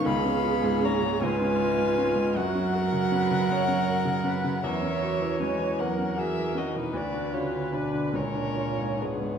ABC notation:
X:1
M:12/8
L:1/16
Q:3/8=52
K:C#mix
V:1 name="Violin"
b4 a2 g6 f12 | =e4 g2 f2 e2 d B =d2 c2 B2 A4 G2 |]
V:2 name="Viola"
G6 E6 F2 A2 B2 c2 A2 B2 | c6 A6 B6 c6 |]
V:3 name="Violin"
e4 c2 B6 A12 | A4 B2 A2 G2 F D F2 E2 =D2 C4 B,2 |]
V:4 name="Grand piano" clef=bass
C,, C E G,, C G,, C,, C E G,, C G,, F,, C F C, C C, F,, C F C, C C, | =E,, C F =E, C E, E,, C F E, C E, =D,, =D F =D, D D, C,, D ^E G,, D G,, |]
V:5 name="Cello" clef=bass
B,4 A,2 G,6 F,12 | =E,4 G,2 F,2 E,2 D, B,, =D,2 C,2 B,,2 A,,4 G,,2 |]